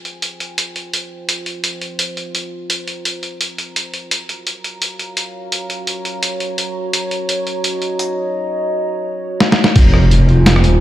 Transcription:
0.00 4.11 F4 medium
0.00 4.12 C5 medium
0.00 4.11 G5 medium
0.00 2.37 G#5 medium
0.05 closed hi-hat soft
0.22 closed hi-hat medium
0.40 closed hi-hat soft
0.58 closed hi-hat medium
0.76 closed hi-hat soft
0.94 closed hi-hat medium
1.29 closed hi-hat medium
1.46 closed hi-hat soft
1.64 closed hi-hat medium
1.81 closed hi-hat soft
1.99 closed hi-hat medium
2.17 closed hi-hat soft
2.27 10.80 A#5 medium
2.35 closed hi-hat medium
2.70 closed hi-hat medium
2.88 closed hi-hat soft
3.05 closed hi-hat medium
3.23 closed hi-hat soft
3.41 closed hi-hat medium
3.58 closed hi-hat soft
3.76 closed hi-hat medium
3.94 closed hi-hat soft
4.11 9.76 F#4 medium
4.11 closed hi-hat medium
4.29 7.44 F5 medium
4.29 closed hi-hat soft
4.36 9.77 C#5 medium
4.47 closed hi-hat medium
4.64 closed hi-hat soft
4.82 closed hi-hat medium
4.99 closed hi-hat soft
5.17 closed hi-hat medium
5.52 closed hi-hat medium
5.70 closed hi-hat soft
5.87 closed hi-hat medium
6.05 closed hi-hat soft
6.23 closed hi-hat medium
6.40 closed hi-hat soft
6.58 closed hi-hat medium
6.93 closed hi-hat medium
7.11 closed hi-hat soft
7.29 closed hi-hat medium
7.34 10.35 D#5 medium
7.47 closed hi-hat soft
7.64 closed hi-hat medium
7.82 closed hi-hat soft
7.99 closed hi-hat medium
9.40 snare medium
9.52 snare medium
9.64 snare medium
9.76 10.66 F1 loud
9.76 10.80 F4 medium
9.76 kick loud
9.76 closed hi-hat medium
9.76 crash loud
9.76 impact medium
9.94 cross-stick medium
10.09 10.80 C5 medium
10.09 10.80 G#5 medium
10.09 closed hi-hat medium
10.23 10.80 G5 medium
10.29 open hi-hat soft
10.46 snare loud
10.46 closed hi-hat medium
10.56 cross-stick medium
10.64 10.80 D#1 medium
10.64 open hi-hat medium

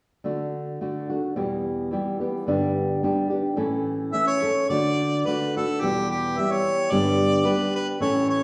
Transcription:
0.24 0.80 D3 medium
0.24 0.80 A3 soft
0.24 0.81 D4 medium
0.24 0.81 F#4 medium
0.81 1.10 D3 soft
0.81 1.10 A3 soft
0.81 1.10 D4 soft
0.81 1.08 F#4 medium
1.10 1.37 A3 soft
1.10 1.37 D4 soft
1.10 1.37 F#4 soft
1.36 1.92 E2 medium
1.36 1.92 B2 soft
1.36 1.90 E3 medium
1.36 1.91 G3 medium
1.36 1.91 B3 medium
1.36 1.92 G4 medium
1.91 2.20 E3 soft
1.91 2.20 G3 medium
1.91 2.20 B3 medium
1.91 2.19 G4 soft
2.20 2.48 E3 soft
2.20 2.47 G3 soft
2.20 2.47 B3 soft
2.20 2.47 G4 soft
2.47 3.02 G2 medium
2.47 3.03 D3 medium
2.47 3.02 G3 medium
2.47 3.02 B3 medium
2.47 3.03 D4 medium
2.47 3.03 G4 medium
3.03 3.32 G3 soft
3.03 3.31 B3 soft
3.03 3.31 D4 medium
3.03 3.29 G4 medium
3.30 3.56 G3 soft
3.30 3.57 B3 soft
3.30 3.57 D4 soft
3.30 3.57 G4 soft
3.56 4.13 A2 medium
3.56 4.12 E3 medium
3.56 4.13 A3 medium
3.56 4.13 C#4 medium
3.56 4.14 A4 medium
4.12 4.43 E3 soft
4.12 4.42 A3 medium
4.12 4.42 C#4 medium
4.12 4.41 A4 soft
4.12 4.27 E5 medium
4.27 4.67 C#5 medium
4.42 4.70 A3 soft
4.42 4.70 C#4 soft
4.42 4.70 A4 soft
4.69 5.25 D3 medium
4.69 5.27 A3 medium
4.69 5.27 D4 medium
4.69 5.27 F#4 medium
4.69 5.28 D5 medium
5.26 5.55 D3 soft
5.26 5.56 A3 soft
5.26 5.56 D4 soft
5.26 5.56 F#4 soft
5.26 5.55 B4 medium
5.57 5.82 A3 soft
5.57 5.82 D4 soft
5.57 5.83 F#4 soft
5.57 5.82 A4 medium
5.81 6.37 E2 medium
5.81 6.37 B2 medium
5.81 6.37 E3 medium
5.81 6.37 G3 medium
5.81 6.37 B3 medium
5.81 6.10 G4 medium
5.81 6.37 G4 medium
6.11 6.39 G4 medium
6.38 6.92 E3 soft
6.38 6.91 G3 soft
6.38 6.92 B3 soft
6.38 6.91 G4 medium
6.38 6.53 E5 medium
6.51 6.92 C#5 medium
6.91 7.46 G2 medium
6.91 7.46 D3 medium
6.91 7.44 G3 medium
6.91 7.45 B3 medium
6.91 7.46 D4 medium
6.91 7.46 G4 medium
6.91 7.48 D5 medium
7.45 8.00 G3 medium
7.45 8.01 B3 medium
7.45 8.01 D4 medium
7.45 8.02 G4 medium
7.45 7.75 B4 medium
7.75 7.87 B4 medium
8.00 8.43 A2 medium
8.00 8.43 E3 medium
8.00 8.43 A3 medium
8.00 8.43 C#4 medium
8.00 8.43 A4 medium
8.00 8.28 C#5 medium
8.29 8.43 C#5 medium

